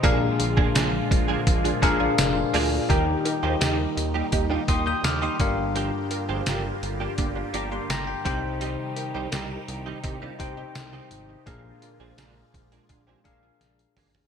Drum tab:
HH |x-x-x-x-xxx-x-o-|x-x-x-x-x-x-x-x-|x-x-x-x-x-x-x-x-|x-x-x-x-x-x-x-x-|
TB |----x-------x---|----x-------x---|----x-------x---|----x-------x---|
SD |----o-------o---|----o-------o---|----o-------o---|----o-------o---|
T2 |----------------|----------------|----------------|----------------|
FT |----------------|----------------|----------------|----------------|
BD |o--o--o-o-o-----|o-------o-o---o-|--------o-----o-|--------o-o-----|

HH |x-x-x-xxx-x-xxo-|
TB |----x-----------|
SD |----o-------o---|
T2 |--------------o-|
FT |---------------o|
BD |o-----o-o-o-----|